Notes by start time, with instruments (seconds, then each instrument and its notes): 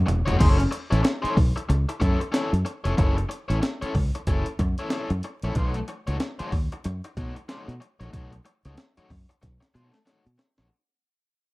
0.06 fingered electric bass E1, muted overdriven electric guitar stroke, closed hi-hat, floor tom
0.26 fingered electric bass F1, overdriven electric guitar A3 D#4 F#4 C#5, closed hi-hat, floor tom
0.39 fingered electric bass F#1, overdriven electric guitar C#4 E4 A4 C#5, kick, closed hi-hat, crash
0.58 muted overdriven electric guitar stroke, closed hi-hat
0.71 muted overdriven electric guitar stroke, closed hi-hat
0.91 fingered electric bass A1, overdriven electric guitar C#4 E4 A4 C#5, closed hi-hat
1.03 muted overdriven electric guitar stroke, snare, closed hi-hat
1.22 overdriven electric guitar C#4 E4 A4 C#5, muted fingered electric bass stroke, closed hi-hat
1.36 fingered electric bass B1, muted overdriven electric guitar stroke, kick, open hi-hat
1.56 muted overdriven electric guitar stroke, closed hi-hat
1.69 fingered electric bass C#2, muted overdriven electric guitar stroke, closed hi-hat
1.89 muted overdriven electric guitar stroke, closed hi-hat
2.00 fingered electric bass F#2, overdriven electric guitar C#4 E4 A4 C#5, kick, closed hi-hat
2.20 muted overdriven electric guitar stroke, closed hi-hat
2.32 overdriven electric guitar C#4 E4 A4 C#5, snare, closed hi-hat
2.53 fingered electric bass F#2, closed hi-hat
2.65 muted overdriven electric guitar stroke, closed hi-hat
2.84 fingered electric bass F1, overdriven electric guitar C#4 E4 A4 C#5, closed hi-hat
2.97 fingered electric bass F#1, overdriven electric guitar C#4 E4 A4 C#5, kick, closed hi-hat
3.17 muted overdriven electric guitar stroke, closed hi-hat
3.29 muted overdriven electric guitar stroke, closed hi-hat
3.48 fingered electric bass A1, overdriven electric guitar C#4 E4 A4 C#5, closed hi-hat
3.61 muted overdriven electric guitar stroke, snare, closed hi-hat
3.82 overdriven electric guitar C#4 E4 A4 C#5, muted fingered electric bass stroke, closed hi-hat
3.94 fingered electric bass C#2, muted overdriven electric guitar stroke, kick, open hi-hat
4.15 muted overdriven electric guitar stroke, closed hi-hat
4.27 fingered electric bass F#1, overdriven electric guitar C#4 E4 A4 C#5, kick, closed hi-hat
4.46 closed hi-hat
4.59 fingered electric bass F#2, muted overdriven electric guitar stroke, kick, closed hi-hat
4.78 overdriven electric guitar C#4 E4 A4 C#5, closed hi-hat
4.90 overdriven electric guitar C#4 E4 A4 C#5, snare, closed hi-hat
5.10 fingered electric bass F#2, closed hi-hat
5.23 muted overdriven electric guitar stroke, closed hi-hat
5.42 fingered electric bass A#1, overdriven electric guitar C#4 E4 A4 C#5, closed hi-hat
5.55 fingered electric bass B1, overdriven electric guitar A3 D#4 F#4 C#5, kick, closed hi-hat
5.74 muted overdriven electric guitar stroke, closed hi-hat
5.88 muted overdriven electric guitar stroke, closed hi-hat
6.07 fingered electric bass C#2, overdriven electric guitar A3 D#4 F#4 C#5, closed hi-hat
6.20 muted overdriven electric guitar stroke, snare, closed hi-hat
6.39 overdriven electric guitar A3 D#4 F#4 C#5, muted fingered electric bass stroke, closed hi-hat
6.52 fingered electric bass D#2, muted overdriven electric guitar stroke, kick, open hi-hat
6.72 muted overdriven electric guitar stroke, closed hi-hat
6.84 fingered electric bass F#2, muted overdriven electric guitar stroke, closed hi-hat
7.04 muted overdriven electric guitar stroke, closed hi-hat
7.17 fingered electric bass B2, overdriven electric guitar A3 D#4 F#4 C#5, kick, closed hi-hat
7.36 muted overdriven electric guitar stroke, closed hi-hat
7.49 overdriven electric guitar A3 D#4 F#4 C#5, snare, closed hi-hat
7.68 fingered electric bass B2, closed hi-hat
7.80 muted overdriven electric guitar stroke, closed hi-hat
8.00 fingered electric bass A#1, overdriven electric guitar A3 D#4 F#4 C#5, closed hi-hat
8.13 fingered electric bass B1, overdriven electric guitar A3 D#4 F#4 C#5, kick, closed hi-hat
8.32 muted overdriven electric guitar stroke, closed hi-hat
8.45 muted overdriven electric guitar stroke, closed hi-hat
8.65 fingered electric bass C#2, overdriven electric guitar A3 D#4 F#4 C#5, closed hi-hat
8.77 muted overdriven electric guitar stroke, snare, closed hi-hat
8.97 overdriven electric guitar A3 D#4 F#4 C#5, muted fingered electric bass stroke, closed hi-hat
9.10 fingered electric bass F#2, muted overdriven electric guitar stroke, kick, snare, open hi-hat
9.29 muted overdriven electric guitar stroke, closed hi-hat
9.41 fingered electric bass B1, muted overdriven electric guitar stroke, kick, snare, closed hi-hat
9.60 muted overdriven electric guitar stroke, snare, closed hi-hat
9.74 fingered electric bass B2, overdriven electric guitar A3 D#4 F#4 C#5, closed hi-hat
9.92 muted overdriven electric guitar stroke, snare, closed hi-hat
10.06 overdriven electric guitar A3 D#4 F#4 C#5, snare, closed hi-hat
10.26 fingered electric bass B2, closed hi-hat
10.38 muted overdriven electric guitar stroke, snare, closed hi-hat
10.58 fingered electric bass A#1, overdriven electric guitar A3 D#4 F#4 C#5, snare, closed hi-hat